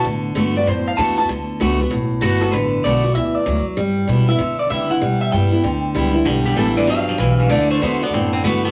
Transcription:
0.05 upright bass A2, steel-string acoustic guitar D3
0.35 upright bass G2, steel-string acoustic guitar D3 A3 B3 F#4
0.56 steel-string acoustic guitar B3 F#4, clean electric guitar D5
0.67 upright bass F#2, steel-string acoustic guitar A2, clean electric guitar C5
0.88 clean electric guitar F5
0.97 upright bass E2, steel-string acoustic guitar D3 A3 B3 F#4, clean electric guitar A5
1.18 steel-string acoustic guitar B3 F#4, clean electric guitar A5
1.29 upright bass D2, steel-string acoustic guitar D3
1.60 upright bass C#2, steel-string acoustic guitar D3 A3 B3 F#4
1.79 steel-string acoustic guitar B3 F#4
1.91 upright bass B1, steel-string acoustic guitar A2
2.21 upright bass G1, steel-string acoustic guitar D3 A3 B3 F#4, clean electric guitar F#4
2.41 steel-string acoustic guitar B3 F#4, clean electric guitar A4
2.51 upright bass A1, steel-string acoustic guitar D3, clean electric guitar B4
2.84 upright bass B1, steel-string acoustic guitar D3 A3 B3 F#4, clean electric guitar D5
3.04 steel-string acoustic guitar B3 F#4
3.15 upright bass D2, steel-string acoustic guitar E3, clean electric guitar E5
3.35 clean electric guitar D5
3.46 upright bass D2, steel-string acoustic guitar F#3
3.77 upright bass G2, steel-string acoustic guitar G3
4.07 upright bass B2, steel-string acoustic guitar G3 B3 E4
4.28 steel-string acoustic guitar B3 E4, clean electric guitar E5
4.39 steel-string acoustic guitar D3, upright bass D3
4.59 clean electric guitar D5
4.70 upright bass C#3, steel-string acoustic guitar G3 B3 E4, clean electric guitar E5
4.90 steel-string acoustic guitar B3 E4, clean electric guitar F#5
5.01 upright bass B2, steel-string acoustic guitar G3
5.21 clean electric guitar E5
5.32 upright bass G2, steel-string acoustic guitar G3 B3 E4, clean electric guitar G5
5.52 steel-string acoustic guitar B3 E4
5.64 upright bass D2, steel-string acoustic guitar D3
5.95 upright bass C#2, steel-string acoustic guitar G3 B3 E4
6.14 steel-string acoustic guitar B3 E4
6.25 upright bass B1, clean electric guitar G2 D3, steel-string acoustic guitar G3
6.46 clean electric guitar G2 D3 G4
6.56 upright bass A1, clean electric guitar G2 E3 A4, steel-string acoustic guitar G3 B3 E4
6.76 clean electric guitar G2 E3 D5, steel-string acoustic guitar B3 E4
6.87 upright bass G1, clean electric guitar G2 F3 F5, steel-string acoustic guitar F#3
7.08 clean electric guitar G2 F3
7.18 upright bass B1, clean electric guitar G2 E3, steel-string acoustic guitar E3
7.39 clean electric guitar G2 E3
7.49 upright bass D2, steel-string acoustic guitar D3, clean electric guitar D3 A3 D5
7.71 clean electric guitar D3 A3 C5
7.81 upright bass E2, steel-string acoustic guitar D3 A3 B3 F#4, clean electric guitar D3 B3 C5
8.02 clean electric guitar D3 B3 D5, steel-string acoustic guitar B3 F#4
8.13 upright bass F#2, steel-string acoustic guitar A2, clean electric guitar D3 C4
8.33 clean electric guitar D3 C4
8.44 upright bass G2, steel-string acoustic guitar D3 A3 B3 F#4, clean electric guitar D3 B3
8.64 clean electric guitar D3 B3, steel-string acoustic guitar B3 F#4

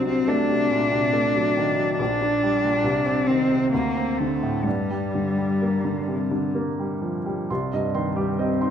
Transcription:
Already playing: grand piano C2 F#3 D4
0.06 grand piano C3, cello C4
0.28 grand piano A3, cello D4
0.49 grand piano C3
0.71 grand piano A#2
0.91 grand piano C3
1.13 grand piano A3
1.35 grand piano F#3
1.57 grand piano D#3
1.78 grand piano F#3
1.99 grand piano A#1, cello D4
2.21 grand piano D4
2.43 grand piano G3
2.64 grand piano A#2
2.84 grand piano C2
3.06 grand piano C4
3.27 grand piano D#3, cello C4
3.50 grand piano C3
3.72 grand piano D2, cello A#3
3.97 grand piano C4
4.17 grand piano D3, cello A3
4.43 grand piano A2
4.64 grand piano G2, cello G3
4.91 grand piano G3
5.15 grand piano D3
5.38 grand piano G3
5.62 grand piano A#3
5.85 grand piano D3
6.07 grand piano C3
6.31 grand piano D3
6.55 grand piano A#3
6.79 grand piano G3
7.02 grand piano F3
7.26 grand piano G3
7.50 grand piano C2 C6
7.73 grand piano G2 D#5
7.95 grand piano D#3 C6
8.16 grand piano G3 G4
8.39 grand piano C4 D#5
8.61 grand piano D#4 C6

